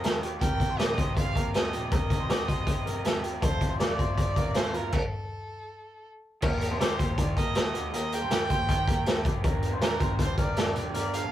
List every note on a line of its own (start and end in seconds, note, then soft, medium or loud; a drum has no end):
0.00 0.17 F2 medium
0.00 0.24 A#3 soft
0.00 0.23 D#4 medium
0.00 0.21 G4 medium
0.00 0.22 A4 medium
0.00 0.18 D#5 medium
0.00 closed hi-hat medium
0.05 snare loud
0.22 0.42 A#3 soft
0.22 0.42 D#4 soft
0.22 0.41 G4 soft
0.22 0.41 G4 medium
0.22 closed hi-hat medium
0.41 0.57 C2 medium
0.41 0.79 C3 medium
0.41 0.77 G3 medium
0.41 0.79 C4 medium
0.41 0.79 D#4 medium
0.41 0.80 G4 medium
0.41 0.68 A#4 medium
0.41 0.80 G5 medium
0.41 kick loud
0.41 closed hi-hat medium
0.60 0.76 C2 medium
0.60 kick medium
0.60 closed hi-hat medium
0.70 0.79 C5 medium
0.78 0.95 A#1 medium
0.78 0.97 G3 medium
0.78 0.98 C4 medium
0.78 0.98 D#4 medium
0.78 0.96 G4 medium
0.78 0.98 D5 medium
0.78 1.16 D#5 medium
0.78 snare loud
0.78 closed hi-hat medium
0.98 1.30 C2 medium
0.98 1.16 C4 soft
0.98 1.17 D#4 soft
0.98 1.16 G4 soft
0.98 1.33 C5 medium
0.98 kick medium
0.98 closed hi-hat medium
1.16 1.35 C3 medium
1.16 1.36 G3 medium
1.16 1.36 C4 medium
1.16 1.35 D#4 medium
1.16 1.33 G4 medium
1.16 1.52 F5 medium
1.16 kick medium
1.16 closed hi-hat medium
1.34 1.73 D#2 medium
1.34 1.76 C4 soft
1.34 1.73 D#4 soft
1.34 1.71 G4 soft
1.34 1.55 A#4 medium
1.34 kick medium
1.34 closed hi-hat medium
1.54 1.73 A4 medium
1.54 1.90 D#5 medium
1.54 snare loud
1.54 closed hi-hat medium
1.72 1.89 A#1 medium
1.72 1.91 C4 soft
1.72 1.92 D#4 soft
1.72 1.91 G4 soft
1.72 1.91 G4 medium
1.72 closed hi-hat medium
1.91 2.08 C2 medium
1.91 2.29 C3 medium
1.91 2.28 G3 medium
1.91 2.30 C4 medium
1.91 2.30 D#4 medium
1.91 2.30 G4 medium
1.91 2.18 A#4 medium
1.91 3.20 D#5 medium
1.91 kick loud
1.91 closed hi-hat medium
2.10 2.26 C2 medium
2.10 kick medium
2.10 closed hi-hat medium
2.20 2.29 C5 medium
2.29 2.45 D2 medium
2.29 2.48 G3 medium
2.29 2.48 C4 medium
2.29 2.48 D#4 medium
2.29 2.46 G4 medium
2.29 2.48 D5 medium
2.29 snare loud
2.29 closed hi-hat medium
2.47 2.64 C2 medium
2.47 2.67 C4 soft
2.47 2.67 D#4 soft
2.47 2.66 G4 soft
2.47 2.84 C5 medium
2.47 kick medium
2.47 closed hi-hat medium
2.67 2.83 G1 medium
2.67 2.86 C3 medium
2.67 2.86 G3 medium
2.67 2.86 C4 medium
2.67 2.86 D#4 medium
2.67 2.84 G4 medium
2.67 kick medium
2.67 closed hi-hat medium
2.85 3.18 F1 medium
2.85 3.25 C4 soft
2.85 3.23 D#4 soft
2.85 3.22 G4 medium
2.85 3.04 A#4 medium
2.85 closed hi-hat medium
3.05 3.23 A4 medium
3.05 snare loud
3.05 closed hi-hat medium
3.23 3.42 C4 soft
3.23 3.43 D#4 soft
3.23 3.42 G4 medium
3.23 closed hi-hat medium
3.41 3.58 F1 medium
3.41 3.79 F2 medium
3.41 3.80 C3 medium
3.41 3.77 F3 medium
3.41 3.78 A3 medium
3.41 3.80 C4 medium
3.41 3.81 F4 medium
3.41 3.69 A4 medium
3.41 3.77 C5 medium
3.41 kick loud
3.41 closed hi-hat medium
3.61 3.77 F1 medium
3.61 kick medium
3.61 closed hi-hat medium
3.70 3.79 C5 medium
3.78 3.96 F1 medium
3.78 4.16 F3 soft
3.78 4.17 A3 medium
3.78 4.17 C4 medium
3.78 4.18 F4 medium
3.78 4.14 D5 medium
3.78 3.98 D5 medium
3.78 snare medium
3.78 closed hi-hat medium
3.99 4.31 G1 medium
3.99 4.34 C5 medium
3.99 kick medium
3.99 closed hi-hat medium
4.16 4.36 F2 medium
4.16 4.36 C3 medium
4.16 4.36 F3 medium
4.16 4.37 A3 medium
4.16 4.36 C4 medium
4.16 4.34 F4 medium
4.16 4.57 D5 medium
4.16 kick medium
4.16 closed hi-hat medium
4.35 4.68 A1 medium
4.35 4.75 F3 soft
4.35 4.75 A3 soft
4.35 4.73 C4 soft
4.35 4.72 F4 soft
4.35 4.55 A#4 medium
4.35 kick medium
4.35 closed hi-hat medium
4.54 4.74 A4 medium
4.54 4.76 C5 medium
4.54 snare loud
4.54 closed hi-hat medium
4.73 4.90 G1 medium
4.73 4.94 F3 soft
4.73 4.94 A3 soft
4.73 4.93 C4 soft
4.73 4.92 F4 soft
4.73 4.93 F4 medium
4.73 4.96 A#4 medium
4.73 closed hi-hat medium
4.92 6.07 A4 medium
4.92 kick medium
4.92 crash medium
6.41 6.67 D#2 medium
6.41 6.80 D#3 medium
6.41 6.79 G3 medium
6.41 6.80 A#3 medium
6.41 6.81 D#4 loud
6.41 6.82 G4 medium
6.41 6.70 A#4 medium
6.41 kick loud
6.41 crash medium
6.61 closed hi-hat medium
6.70 6.87 F2 medium
6.70 6.80 C5 medium
6.80 7.18 G3 medium
6.80 7.18 A#3 medium
6.80 7.18 D#4 medium
6.80 7.19 G4 medium
6.80 7.15 C5 medium
6.80 6.99 D5 medium
6.80 snare loud
6.80 closed hi-hat medium
6.99 7.15 D#2 medium
6.99 7.35 C5 medium
6.99 kick medium
6.99 closed hi-hat medium
7.17 7.56 D#3 medium
7.17 7.34 D#3 medium
7.17 7.54 G3 medium
7.17 7.55 A#3 medium
7.17 7.56 D#4 medium
7.17 7.58 G4 medium
7.17 7.36 D5 medium
7.17 kick medium
7.17 closed hi-hat medium
7.37 7.69 D#2 medium
7.37 7.55 A#4 medium
7.37 7.90 D#5 medium
7.37 kick medium
7.37 closed hi-hat medium
7.54 7.74 G3 medium
7.54 7.75 A#3 medium
7.54 7.74 D#4 medium
7.54 7.72 G4 medium
7.54 7.74 A4 medium
7.54 snare loud
7.54 closed hi-hat medium
7.73 7.90 D2 medium
7.73 7.92 A#3 soft
7.73 7.93 D#4 soft
7.73 7.93 G4 soft
7.73 7.93 G4 medium
7.73 closed hi-hat medium
7.92 8.17 D#2 medium
7.92 8.12 D#3 medium
7.92 8.12 G3 medium
7.92 8.12 A#3 medium
7.92 8.11 D#4 medium
7.92 8.09 G4 medium
7.92 8.20 A#4 medium
7.92 8.15 D#5 medium
7.92 closed hi-hat medium
8.10 8.29 A#3 soft
8.10 8.30 D#4 soft
8.10 8.30 G4 soft
8.10 9.26 G5 medium
8.10 closed hi-hat medium
8.22 8.38 G2 medium
8.22 8.31 C5 medium
8.29 8.68 G3 medium
8.29 8.68 A#3 medium
8.29 8.68 D#4 medium
8.29 8.70 G4 medium
8.29 8.50 D5 medium
8.29 snare loud
8.29 closed hi-hat medium
8.50 8.66 D#2 medium
8.50 8.85 C5 medium
8.50 kick medium
8.50 closed hi-hat medium
8.68 9.06 D#3 medium
8.68 8.88 D#3 loud
8.68 9.05 G3 medium
8.68 9.07 A#3 loud
8.68 9.07 D#4 medium
8.68 9.08 G4 medium
8.68 kick medium
8.68 closed hi-hat medium
8.87 9.19 D#2 medium
8.87 9.06 A#4 medium
8.87 kick medium
8.87 closed hi-hat medium
9.06 9.25 G3 medium
9.06 9.26 A#3 medium
9.06 9.25 D#4 medium
9.06 9.22 G4 medium
9.06 9.25 A4 medium
9.06 snare loud
9.06 closed hi-hat medium
9.24 9.41 F1 medium
9.24 9.43 A#3 soft
9.24 9.44 D#4 soft
9.24 9.43 G4 medium
9.24 9.44 G4 medium
9.24 kick medium
9.24 closed hi-hat medium
9.42 9.68 G1 loud
9.42 9.81 G2 medium
9.42 9.81 D3 medium
9.42 9.79 F3 medium
9.42 9.81 A#3 medium
9.42 9.81 D4 loud
9.42 9.83 G4 medium
9.42 9.71 A#4 medium
9.42 kick loud
9.42 closed hi-hat medium
9.62 closed hi-hat medium
9.72 9.88 A1 medium
9.72 9.82 C5 medium
9.80 10.18 F3 medium
9.80 10.20 A#3 medium
9.80 10.19 D4 medium
9.80 10.20 G4 medium
9.80 10.17 A#4 medium
9.80 10.00 D5 medium
9.80 snare loud
9.80 closed hi-hat medium
10.00 10.16 G1 loud
10.00 10.36 C5 medium
10.00 kick medium
10.00 closed hi-hat medium
10.18 10.56 G2 medium
10.18 10.35 G2 loud
10.18 10.57 D3 medium
10.18 10.54 F3 medium
10.18 10.56 A#3 medium
10.18 10.57 D4 medium
10.18 10.58 G4 medium
10.18 10.38 C5 medium
10.18 kick medium
10.18 closed hi-hat medium
10.38 10.70 G1 medium
10.38 10.56 A#4 medium
10.38 10.90 D5 medium
10.38 kick medium
10.38 closed hi-hat medium
10.55 10.75 F3 medium
10.55 10.75 A#3 medium
10.55 10.74 D4 medium
10.55 10.73 G4 medium
10.55 10.76 A4 medium
10.55 snare loud
10.55 closed hi-hat medium
10.74 10.91 F1 medium
10.74 10.92 F3 soft
10.74 10.92 A#3 soft
10.74 10.93 D4 soft
10.74 10.93 G4 medium
10.74 10.94 G4 medium
10.74 closed hi-hat medium
10.92 11.18 G1 medium
10.92 11.31 G2 medium
10.92 11.31 D3 medium
10.92 11.28 F3 medium
10.92 11.31 A#3 medium
10.92 11.31 D4 medium
10.92 11.32 G4 medium
10.92 11.22 A#4 loud
10.92 11.15 D5 medium
10.92 closed hi-hat medium
11.13 11.32 F5 medium
11.13 closed hi-hat medium
11.22 11.32 A#1 medium
11.22 11.32 A4 medium